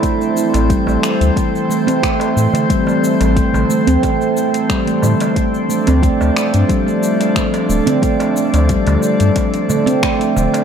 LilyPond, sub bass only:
\new Staff \with { instrumentName = "Sub bass" } { \clef bass \time 4/4 \key a \minor \tempo 4 = 90 r8. a,,16 r16 a,,16 r16 d,16 r4. a,16 r16 | r8. a,,16 r16 a,,16 r16 d,16 r4. a,16 r16 | r8. d,16 r16 d,16 r16 g,16 r4. d,,16 r16 | r8. d,16 r16 d,16 r16 g,16 r4. d,,16 r16 | }